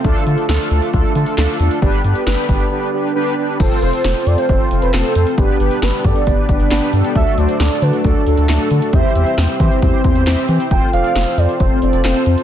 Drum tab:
CC |----------------|----------------|x---------------|----------------|
HH |x-xxx-xxx-xxx-xx|x-xxx-xx--------|x-xxx-xxx-xxx-xx|x-xxx-xxx-xxx-xx|
CP |------------x---|----------------|------------x---|------------x---|
SD |----o-------o---|----o-----------|----o-------o---|----o-------o---|
BD |o-------o-------|o-----o---------|o-------o-------|o-----o-o-o-----|

CC |----------------|----------------|----------------|
HH |x-xxx-xxx-xxx-xx|x-xxx-xxx-xxx-xx|x-xxx-xxx-xxx-xx|
CP |------------x---|------------x---|------------x---|
SD |----o-------o---|----o-------o---|----o-------o---|
BD |o-------o-------|o-----o-o-o-----|o-------o-------|